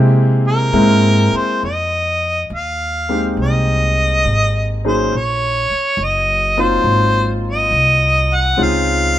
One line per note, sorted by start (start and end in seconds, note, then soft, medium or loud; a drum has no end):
0.00 0.71 C3 medium
0.00 0.67 G#3 medium
0.00 0.67 A#3 medium
0.00 0.67 C4 medium
0.00 0.67 E4 medium
0.00 0.67 G4 medium
0.48 1.38 A#4 medium
0.73 1.29 G#2 medium
0.73 1.27 G#3 medium
0.73 1.27 A#3 medium
0.73 1.27 C4 medium
0.73 1.27 E4 medium
0.73 1.27 A#4 medium
1.33 1.64 C5 medium
1.33 muted upright bass stroke soft
1.63 2.48 F2 medium
1.63 2.47 D#5 medium
2.50 3.35 D#2 medium
2.56 3.36 F5 medium
3.09 3.35 G#3 soft
3.09 3.35 A#3 soft
3.09 3.35 C4 soft
3.09 3.35 D#4 soft
3.09 3.35 G4 medium
3.37 4.22 C2 medium
3.41 4.81 D#5 medium
4.25 5.09 G#1 medium
4.84 5.09 F#3 medium
4.84 5.09 A#3 medium
4.84 5.09 C#4 medium
4.84 5.09 D#4 medium
4.84 5.10 G#4 medium
4.84 5.18 C5 medium
5.12 5.66 A#1 medium
5.17 6.05 C#5 medium
5.71 muted upright bass stroke soft
5.97 6.82 F#1 medium
6.04 6.62 D#5 medium
6.57 7.66 F#3 medium
6.57 7.66 A#3 soft
6.57 7.66 C4 medium
6.57 7.67 D#4 soft
6.57 7.66 F4 medium
6.57 7.31 C5 medium
6.84 7.69 G#1 medium
7.48 8.37 D#5 medium
7.71 8.55 C2 medium
8.35 8.64 F#5 medium
8.57 9.19 C#2 medium
8.57 9.10 G#3 medium
8.57 9.10 C4 soft
8.57 9.10 C#4 soft
8.57 9.11 D#4 medium
8.57 9.10 F4 medium
8.63 9.19 F5 loud